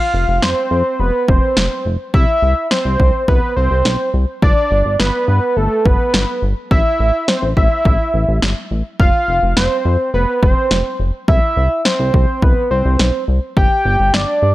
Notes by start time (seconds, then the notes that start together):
Already playing: F5
0.14 F1
0.28 F1
0.42 F1 C5, snare
0.71 F2
1.00 F1 B4
1.28 F1 C5, kick
1.57 F1, snare
1.85 F1
2.14 C2 E5, kick
2.42 C2
2.71 C5, snare
2.85 C2
3.00 C2, kick
3.28 C2 B4, kick
3.56 C2 C5
3.71 C2
3.85 B1, snare
4.14 C2
4.42 G1 D5, kick
4.71 G1
4.85 G1
5.00 G1 B4, snare
5.28 G2
5.57 G1 A4
5.85 G1 B4, kick
6.14 G1, snare
6.42 G1
6.71 A1 E5, kick
7.00 A1
7.28 C5, snare
7.42 A1
7.57 A1 E5, kick
7.85 A1, kick
8.14 A1
8.28 A1
8.42 G1, snare
8.71 A1
9.00 F1 F5, kick
9.28 F1
9.42 F1
9.57 F1 C5, snare
9.85 F2
10.14 F1 B4
10.42 F1 C5, kick
10.71 F1, snare
11.00 F1
11.28 C2 E5, kick
11.57 C2
11.85 C5, snare
12.00 C2
12.14 C2, kick
12.42 C2 B4, kick
12.71 C2 C5
12.85 C2
12.99 B1, snare
13.28 C2
13.57 G1 G5, kick
13.85 G1
14.00 G1
14.14 G1 D5, snare
14.42 G2